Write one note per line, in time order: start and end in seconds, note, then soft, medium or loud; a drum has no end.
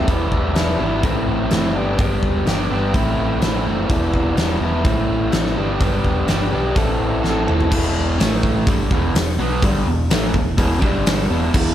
0.08 0.31 E1 medium
0.08 0.53 E2 medium
0.08 0.54 B2 medium
0.08 0.55 E3 medium
0.08 0.56 G3 loud
0.08 0.55 B3 loud
0.08 0.56 E4 loud
0.08 kick loud
0.08 open hi-hat soft
0.32 0.55 E1 medium
0.32 kick medium
0.55 0.79 E1 medium
0.55 0.78 E2 medium
0.55 0.79 B2 medium
0.55 0.79 E3 medium
0.55 0.80 G3 medium
0.55 0.80 B3 medium
0.55 0.80 E4 medium
0.55 snare loud
0.55 open hi-hat soft
0.79 1.04 G#1 medium
0.79 1.02 E2 medium
0.79 1.02 B2 medium
0.79 1.02 E3 medium
0.79 1.03 G3 medium
0.79 1.03 B3 medium
0.79 1.03 E4 medium
1.02 1.27 A1 medium
1.02 1.50 A2 medium
1.02 1.50 E3 medium
1.02 1.51 A3 medium
1.02 1.51 C4 medium
1.02 1.52 E4 medium
1.02 kick loud
1.02 open hi-hat soft
1.27 1.50 A1 medium
1.51 1.75 F#1 medium
1.51 1.74 A2 medium
1.51 1.74 E3 medium
1.51 1.74 A3 medium
1.51 1.74 C4 medium
1.51 1.75 E4 medium
1.51 snare loud
1.51 open hi-hat soft
1.74 1.98 G1 medium
1.74 1.97 G2 medium
1.74 1.97 D3 medium
1.74 1.99 G3 medium
1.74 1.98 B3 medium
1.74 1.99 D4 medium
1.74 2.00 G4 loud
1.98 2.22 G1 medium
1.98 2.44 G2 medium
1.98 2.45 D3 medium
1.98 2.46 G3 loud
1.98 2.46 B3 loud
1.98 2.47 D4 loud
1.98 2.48 G4 loud
1.98 kick loud
1.98 open hi-hat soft
2.23 2.46 E1 medium
2.23 kick medium
2.45 2.70 G1 medium
2.45 2.68 G2 medium
2.45 2.69 D3 medium
2.45 2.70 G3 medium
2.45 2.70 B3 medium
2.45 2.71 D4 medium
2.45 2.72 G4 medium
2.45 snare loud
2.45 open hi-hat soft
2.69 2.94 G1 medium
2.69 2.92 G2 medium
2.69 2.93 D3 medium
2.69 2.93 G3 medium
2.69 2.93 B3 medium
2.69 2.94 D4 medium
2.69 2.95 G4 loud
2.93 3.17 A1 medium
2.93 3.40 A2 medium
2.93 3.41 E3 medium
2.93 3.41 A3 loud
2.93 3.41 C4 loud
2.93 3.42 E4 loud
2.93 kick loud
2.93 open hi-hat soft
3.18 3.40 A1 medium
3.41 3.64 A1 medium
3.41 3.64 A2 medium
3.41 3.64 E3 medium
3.41 3.66 A3 medium
3.41 3.66 C4 medium
3.41 3.66 E4 medium
3.41 snare loud
3.41 open hi-hat soft
3.66 3.89 F#1 medium
3.66 3.88 A2 medium
3.66 3.88 E3 medium
3.66 3.89 A3 medium
3.66 3.89 C4 medium
3.66 3.89 E4 medium
3.88 4.13 E1 medium
3.88 4.34 E2 loud
3.88 4.34 B2 medium
3.88 4.35 E3 medium
3.88 4.37 G3 medium
3.88 4.36 B3 loud
3.88 4.36 E4 loud
3.88 kick loud
3.88 open hi-hat soft
4.14 4.36 E1 medium
4.14 kick medium
4.35 4.60 E1 medium
4.35 4.59 E2 medium
4.35 4.59 B2 medium
4.35 4.60 E3 medium
4.35 4.61 G3 medium
4.35 4.60 B3 medium
4.35 4.61 E4 medium
4.35 snare loud
4.35 open hi-hat soft
4.60 4.84 E1 medium
4.60 4.83 E2 medium
4.60 4.83 B2 medium
4.60 4.83 E3 medium
4.60 4.84 G3 medium
4.60 4.84 B3 medium
4.60 4.84 E4 medium
4.84 5.08 A1 medium
4.84 5.30 A2 medium
4.84 5.31 E3 medium
4.84 5.31 A3 loud
4.84 5.32 C4 medium
4.84 5.33 E4 loud
4.84 kick loud
4.84 open hi-hat soft
5.09 5.32 A1 medium
5.31 5.56 A1 medium
5.31 5.54 A2 medium
5.31 5.55 E3 medium
5.31 5.55 A3 medium
5.31 5.55 C4 medium
5.31 5.56 E4 medium
5.31 snare loud
5.31 open hi-hat soft
5.46 snare soft
5.55 5.79 G1 medium
5.55 5.78 G2 medium
5.55 5.79 D3 medium
5.55 5.79 G3 medium
5.55 5.79 B3 medium
5.55 5.80 D4 loud
5.55 5.81 G4 loud
5.79 6.04 G1 medium
5.79 6.25 G2 medium
5.79 6.26 D3 medium
5.79 6.27 G3 medium
5.79 6.27 B3 loud
5.79 6.28 D4 loud
5.79 6.28 G4 loud
5.79 kick loud
5.79 open hi-hat soft
6.04 6.27 E1 medium
6.04 kick medium
6.27 6.51 G1 medium
6.27 6.49 G2 medium
6.27 6.50 D3 medium
6.27 6.50 G3 medium
6.27 6.51 B3 medium
6.27 6.51 D4 medium
6.27 6.51 G4 medium
6.27 snare loud
6.27 open hi-hat soft
6.50 6.75 B1 medium
6.50 6.74 G2 medium
6.50 6.74 D3 medium
6.50 6.74 G3 medium
6.50 6.75 B3 medium
6.50 6.75 D4 medium
6.50 6.75 G4 medium
6.75 6.99 A1 medium
6.75 7.21 A2 medium
6.75 7.22 E3 medium
6.75 7.22 C4 medium
6.75 7.23 E4 loud
6.75 7.23 A4 loud
6.75 kick loud
6.75 open hi-hat soft
7.00 7.23 A1 medium
7.22 7.46 A1 medium
7.22 7.45 A2 medium
7.22 7.46 E3 medium
7.22 7.46 C4 medium
7.22 7.47 E4 medium
7.22 7.47 A4 medium
7.22 snare medium
7.46 7.70 E1 medium
7.46 7.69 A2 medium
7.46 7.70 E3 medium
7.46 7.70 C4 medium
7.46 7.70 E4 medium
7.46 7.70 A4 medium
7.46 mid tom medium
7.60 floor tom medium
7.70 8.16 E1 medium
7.70 8.18 E2 loud
7.70 8.18 B2 loud
7.70 8.17 E3 loud
7.70 kick loud
7.70 crash loud
8.18 8.63 A1 medium
8.18 8.66 A2 medium
8.18 8.66 E3 loud
8.18 8.66 A3 loud
8.18 snare loud
8.18 open hi-hat medium
8.43 kick medium
8.67 8.89 G1 medium
8.67 8.90 G2 medium
8.67 8.90 D3 medium
8.67 8.90 G3 loud
8.67 kick loud
8.67 open hi-hat medium
8.91 9.13 E1 loud
8.91 9.14 E2 medium
8.91 9.15 B2 medium
8.91 9.15 E3 medium
8.91 kick medium
9.14 9.37 E1 medium
9.14 9.34 E2 medium
9.14 9.35 B2 medium
9.14 snare loud
9.14 open hi-hat medium
9.38 9.60 B1 loud
9.38 9.62 B2 medium
9.38 9.62 F#3 loud
9.38 9.63 B3 loud
9.62 9.85 G1 loud
9.62 9.86 G2 loud
9.62 9.86 D3 loud
9.62 9.86 G3 loud
9.62 kick loud
9.62 open hi-hat medium
9.86 10.09 E1 medium
9.86 10.06 E2 medium
9.86 10.06 B2 medium
10.10 10.33 A1 loud
10.10 10.34 A2 medium
10.10 10.34 E3 loud
10.10 10.34 A3 loud
10.10 snare loud
10.10 open hi-hat medium
10.34 10.57 E1 medium
10.34 10.53 E2 medium
10.34 10.53 B2 medium
10.34 kick medium
10.57 10.80 E1 medium
10.57 10.81 E2 medium
10.57 10.82 B2 loud
10.57 10.83 E3 loud
10.57 kick loud
10.57 open hi-hat medium
10.81 11.27 G1 loud
10.81 11.29 G2 medium
10.81 11.29 D3 medium
10.81 11.30 G3 loud
10.81 kick medium
11.06 snare loud
11.06 open hi-hat medium
11.30 11.53 E1 loud
11.30 11.53 E2 medium
11.30 11.54 B2 medium
11.30 11.54 E3 medium
11.54 11.74 E1 medium
11.54 11.74 E2 loud
11.54 11.74 B2 loud
11.54 11.74 E3 loud
11.54 kick loud
11.54 crash loud